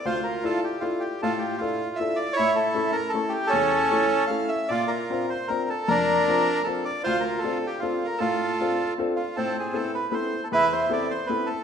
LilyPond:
<<
  \new Staff \with { instrumentName = "Bandoneon" } { \time 3/4 \key d \minor \tempo 4 = 155 << { c''8 bes'8 a'8 g'8 f'8 g'8 | a'8 g'8 f'4 e''8 d''8 | cis''8 a'4 bes'8 a'8 g'8 | a'2 f''8 e''8 |
d''8 bes'4 c''8 bes'8 a'8 | bes'2 a'8 d''8 | c''8 bes'8 \tuplet 3/2 { a'4 g'8 f'4 bes'8 } | a'2 r8 f'8 |
\key a \minor a'8 gis'8 a'8 b'8 c''8. a'16 | b'8 c''8 d''8 c''8 b'8 a'8 | } \\ { f'4. r4. | f'4. r4. | e'4. r4. | cis'2 r4 |
f'4. r4. | d'2 r4 | f'4. r4. | f'2 r4 |
c'4. r4. | e'4. r4. | } >> }
  \new Staff \with { instrumentName = "Upright piano" } { \time 3/4 \key d \minor d,4 <d' e' f' a'>8 r8 <d' e' f' a'>8 r8 | a,4 <d' e' f' a'>8 r8 <d' e' f' a'>8 r8 | a,4 <a cis' e' a'>8 r8 <a cis' e' a'>8 r8 | e,4 <a cis' e' a'>8 r8 <a cis' e' a'>8 r8 |
bes,4 <c' d' f' bes'>8 r8 <c' d' f' bes'>8 r8 | f,4 <c' d' f' bes'>8 r8 <c' d' f' bes'>8 r8 | d,4 <c' d' f' a'>8 r8 <c' d' f' a'>8 r8 | a,4 <c' d' f' a'>8 r8 <c' d' f' a'>8 r8 |
\key a \minor a,4 <b c' e' a'>8 r8 <b c' e' a'>8 r8 | e,4 <b c' e' a'>8 r8 <b c' e' a'>8 r8 | }
>>